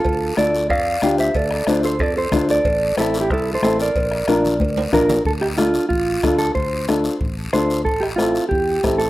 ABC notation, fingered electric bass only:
X:1
M:4/4
L:1/8
Q:1/4=184
K:Dm
V:1 name="Fingered electric bass" clef=bass
D,,2 D,,2 F,,2 D,,2 | D,,2 D,,2 F,,2 D,,2 | A,,,2 A,,,2 C,,2 A,,,2 | B,,,2 B,,,2 D,,2 B,,,2 |
D,,4 A,,,2 D,,2 | D,,4 A,,,2 D,,2 | A,,,4 E,,2 A,,,2 |]